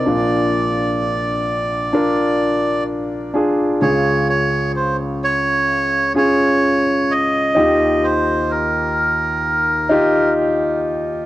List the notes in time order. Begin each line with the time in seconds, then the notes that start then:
Already playing: D5
0.06 A#1 A#2 D4 F4 A#4
1.93 D4 F4 A#4
3.34 D4 F4 G#4
3.81 C#2 C#3 C#4 F4 G#4 C#5
4.29 C#5
4.76 C5
5.24 C#5
6.15 C#4 F4 G#4 C#5
7.11 D#5
7.55 D#2 D#3 D#4 F4 G4
8.04 C5
8.51 A#4
9.89 D#4 F4 G4